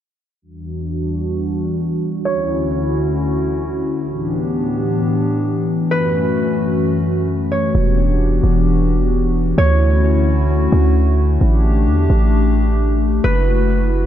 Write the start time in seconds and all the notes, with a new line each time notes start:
0.42 E2 E3 G3 D4 F#4
2.25 D2 D3 C#4 E4 F#4 C#5
4.08 A2 E3 B3 D4 G4
5.91 F#2 A3 C#4 F#4 B4
7.52 C#5
7.75 E1 E3 B3 D4 F#4 G4
8.44 E1
9.58 D2 D3 A3 C#4 E4 F#4 C#5
10.72 D2
11.41 A1 D4 G4
11.87 E2
12.10 A1
13.24 F#1 E4 F#4 B4